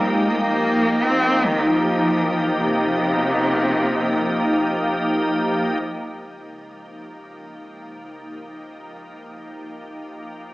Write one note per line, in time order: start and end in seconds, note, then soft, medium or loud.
0.00 10.54 F3 medium
0.00 0.11 G3 medium
0.00 10.54 A#3 medium
0.00 10.54 D#4 medium
0.00 10.54 G4 medium
0.10 0.30 G#3 medium
0.28 0.37 A#3 medium
0.35 0.43 G#3 medium
0.41 1.05 A#3 medium
1.03 1.47 C4 medium
1.46 1.68 D#3 medium
1.67 2.61 F3 medium
2.62 4.97 C3 medium
5.83 8.98 C#2 medium